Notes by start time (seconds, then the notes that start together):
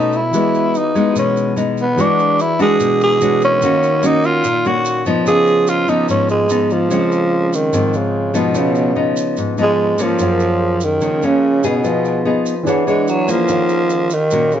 Already playing: B2 A3 B3 C#4 D#4 F#4 A4 C#5 D#5
0.12 shaker
0.17 E4
0.31 E3 G#3 B3 F#4 G#4, shaker
0.36 B4 D#5
0.54 shaker
0.75 D#4, shaker
0.95 G#3 B3 D#4, shaker
1.16 B2 C#4, shaker
1.37 shaker
1.56 G#3 B3 D#4, shaker
1.77 B3, shaker
1.95 E3 G#3 D4 F#4 G#4, shaker
2.00 D4 B4 D5
2.19 shaker
2.39 E4, shaker
2.59 G#3 D4 F#4 G#4, shaker
2.80 B2, shaker
3.01 G#4, shaker
3.19 E3 G#3 D4 F#4 G#4 B4 C#5, shaker
3.42 C#4, shaker
3.59 D#3 A#3 C#4 D#4 A#4, shaker
3.63 F#4 C#5 F5
3.83 shaker
4.03 A#3 C#4 D#4 F#4, shaker
4.23 F4, shaker
4.44 A#2, shaker
4.65 A#3 C#4 F#4, shaker
4.85 shaker
5.06 F3 B3 D#4, shaker
5.23 C#3 C#4 G#4 B4, shaker
5.27 G#4 D#5 F5
5.47 shaker
5.67 F4, shaker
5.88 F3 B3 D#4, shaker
6.09 G#2 C#4, shaker
6.29 G#3, shaker
6.49 F3 B3 D#4, shaker
6.70 F3, shaker
6.89 C#3 F3 G#3 C4 G#4 C5 D#5, shaker
6.93 F5
7.12 shaker
7.53 D#3, shaker
7.73 G#2 F3 G#3 C4, shaker
7.93 C#3, shaker
8.34 F3 B3 D#4, shaker
8.38 B2
8.53 C#3 C#4 G#4 B4, shaker
8.57 D#5 F5
8.75 shaker
8.95 F3 B3 D#4
9.16 shaker
9.37 G#2, shaker
9.58 F3 B3 D#4, shaker
9.62 G#3
9.98 F3 A#3 C#4, shaker
10.03 F3
10.18 F#2 G#4 A#4 C#5, shaker
10.22 F5
10.40 shaker
10.81 D#3, shaker
11.01 C#3 F3 A#3 C#4, shaker
11.22 C#3 F3 A#3 C#4, shaker
11.63 B2 B3 D#4 G#4, shaker
11.81 F3 G#4 B4 D#5, shaker
11.87 F5
12.05 shaker
12.25 B3 D#4 G#4
12.46 shaker
12.63 E3 D4 G#4 B4, shaker
12.68 C#5 F#5
12.87 G#3 D4 G#4 C#5, shaker
13.08 F#3, shaker
13.28 F3 A#3 C#4, shaker
13.47 D#3 A#4 F#5, shaker
13.51 C#5 F5
13.69 shaker
13.90 shaker
14.10 D#3, shaker
14.31 A#2 A#3 C#4 F#4, shaker
14.52 C#3, shaker